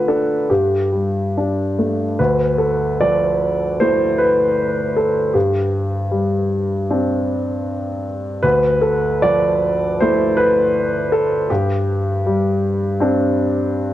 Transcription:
Already playing: D3 A3 F4 A4 B4
0.08 D4 A4
0.50 G2 G4
0.93 G3
1.38 D4
1.79 A3
2.19 D2 B4
2.58 A4
3.01 F3 D5
3.80 A3 E4 C5
4.18 B4
4.96 A4
5.34 G2 G4
6.11 G3
6.91 C4 D4
8.43 D2 B4
8.82 A4
9.22 F3 D5
10.00 A3 E4 C5
10.37 B4
11.12 A4
11.50 G2 G4
12.26 G3
13.00 C4 D4

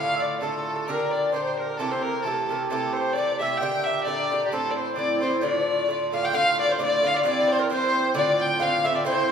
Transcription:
Already playing: A2 D3 A3 F4 F5
0.16 D5 E5
0.22 D5
0.41 A2 D3 A3 F4 A4
0.59 A4
0.76 A4
0.87 A#2 D3 D4 G4 A#4
1.11 D5
1.15 D5
1.32 A#2 D3 D4 G4 C5
1.45 C5
1.58 A#4
1.77 C3 E3 A3 G4 A4
1.91 C5
2.02 A#4
2.07 A#4
2.23 C3 E3 A3 A4
2.27 G4 A4
2.49 C3 E3 A3 G4 A#4
2.69 C3 E3 A3 G4 A4
2.93 C5
3.13 C3 E3 D5
3.18 A3 G4 D5
3.39 C3 E3 A3 G4 E5
3.57 A#2 G5
3.61 D3 D4 G4 G5
3.84 E5
4.03 A#2 D3 D5
4.07 D4 G4 D5
4.30 A#2 D3 D4 G4
4.46 G4
4.50 A2 E3 C4 E4 A4
4.71 D5
4.76 C5
4.92 A2 C5 D5
4.97 E3 C4 E4 D5
5.20 A2 E3 C4 E4 C5
5.41 A2 D3 A3 F4 D5
5.88 A2 D3 A3 F4
6.13 A2 D3 A3 F4 F5
6.22 G5
6.33 A2 D3 A3 F4 F5
6.59 D5
6.68 C5
6.72 C5
6.79 A2 D3 A3 F4 D5
6.83 D5
7.03 A2 D3 A3 F4 F5
7.07 F5
7.14 D5
7.23 G2 E3 C4 E4 D5
7.47 C5
7.52 C5
7.59 A#4
7.70 G2 E3 C4 E4 C5
7.94 C5
8.14 A2 D3 C4 F4 D5
8.40 G5
8.60 A2 D3 C4 F4 F5
8.84 A2 D3 C4 F4 E5
8.95 D5
9.05 A2 E3 C4 E4 C5

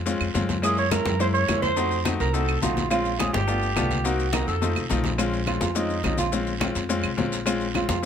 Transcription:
Already playing: F2
0.06 G#3 C4 C#4 F4, high bongo, high conga, long guiro, maracas
0.20 F2, high bongo, high conga, claves, maracas
0.34 F#2 G#3 C4 C#4 F4, high bongo, low bongo, high conga, short guiro, maracas
0.49 high bongo, high conga, short guiro, maracas
0.62 G#3 A#3 C#4 E4 G#4, high bongo, high conga, long guiro, claves, maracas
0.77 C#5, high conga, maracas
0.91 G#3 A#3 C#4 E4 A#4, high bongo, high conga, short guiro, claves, maracas
1.06 F#2, high conga, short guiro, maracas
1.19 G#3 A#3 C#4 E4 C5, high bongo, high conga, long guiro, maracas
1.34 C#5, high conga, maracas
1.48 F2 G#3 A#3 C#4 E4, high bongo, low bongo, high conga, short guiro, claves, maracas
1.62 C5, high conga, short guiro, maracas
1.76 A3 C4 D#4 F#4, high bongo, high conga, long guiro, maracas
1.91 high conga, maracas
2.05 A3 C4 D#4 F#4, high bongo, high conga, short guiro, claves, maracas
2.20 C2 A#4, high bongo, high conga, short guiro, maracas
2.34 A3 C4 D#4 F#4 A4, high bongo, high conga, long guiro, maracas
2.48 high bongo, high conga, claves, maracas
2.62 A#1 A3 C4 D#4 F4 F#4, high bongo, low bongo, high conga, short guiro, maracas
2.77 high bongo, high conga, short guiro, maracas
2.90 G#3 C4 C#4 F4, high bongo, high conga, long guiro, claves, maracas
3.05 high conga, maracas
3.19 G#3 C4 C#4 F4 G#4, high bongo, high conga, short guiro, claves, maracas
3.33 G1 G4, high conga, short guiro, maracas
3.47 A3 B3 D4 F4, high bongo, high conga, long guiro, maracas
3.62 high conga, maracas
3.76 C2 A3 B3 D4 F4, high bongo, low bongo, high conga, short guiro, claves, maracas
3.91 high conga, short guiro, maracas
4.04 A#3 C4 D#4 F#4, high bongo, high conga, long guiro, maracas
4.19 high conga, maracas
4.33 A#3 C4 D#4 F#4 A#4, high bongo, high conga, short guiro, claves, maracas
4.47 F2 A4, high conga, short guiro, maracas
4.61 A3 C4 D#4 F4, low bongo, high conga, long guiro, maracas
4.76 C2, low bongo, high conga, claves, maracas
4.90 A#1 A3 C4 D#4 F4, low bongo, high conga, short guiro, maracas
5.04 low bongo, high conga, short guiro, maracas
5.18 G#3 C4 C#4 F4, high bongo, high conga, long guiro, claves, maracas
5.32 high bongo, high conga, maracas
5.46 G#3 C4 C#4 F4, high bongo, high conga, short guiro, claves, maracas
5.61 F2 F4, high conga, short guiro, maracas
5.75 G#3 C4 C#4 D#4 F4, high bongo, high conga, long guiro, maracas
5.89 high bongo, high conga, maracas
6.04 A#1 G#3 C4 C#4 D#4 F4, high bongo, low bongo, high conga, short guiro, claves, maracas
6.18 F4, high conga, short guiro, maracas
6.32 G#3 C4 C#4 F4, high bongo, high conga, long guiro, maracas
6.47 high bongo, high conga, maracas
6.60 G#3 C4 C#4 F4, high bongo, high conga, short guiro, claves, maracas
6.75 F2, high bongo, high conga, short guiro, maracas
6.89 G#3 C4 C#4 F4, high bongo, high conga, long guiro, maracas
7.04 C2, high bongo, high conga, claves, maracas
7.17 A#1 G#3 C4 C#4 F4, high bongo, low bongo, high conga, short guiro, maracas
7.32 high conga, short guiro, maracas
7.46 G#3 C4 C#4 F4, high bongo, high conga, long guiro, claves, maracas
7.60 high bongo, high conga, maracas
7.74 G#3 C4 C#4 F4, high bongo, high conga, short guiro, claves, maracas
7.89 F2 F4, high bongo, high conga, short guiro, maracas

